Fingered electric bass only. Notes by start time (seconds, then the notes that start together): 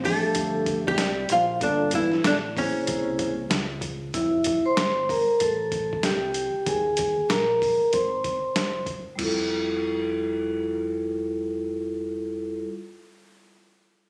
Already playing: A1
0.23 muted fingered electric bass stroke
0.35 G1
0.98 C2
1.29 A#1
1.61 G1
2.12 muted fingered electric bass stroke
2.24 A1
2.88 C2
3.50 C#2
4.14 F1
4.65 muted fingered electric bass stroke
4.77 G1
5.28 muted fingered electric bass stroke
5.41 A1
6.03 C2
6.54 muted fingered electric bass stroke
6.66 D#2
7.17 muted fingered electric bass stroke
7.30 A#1
7.80 muted fingered electric bass stroke
7.93 G#1
8.43 muted fingered electric bass stroke
8.55 F#1
9.07 muted fingered electric bass stroke
9.19 F1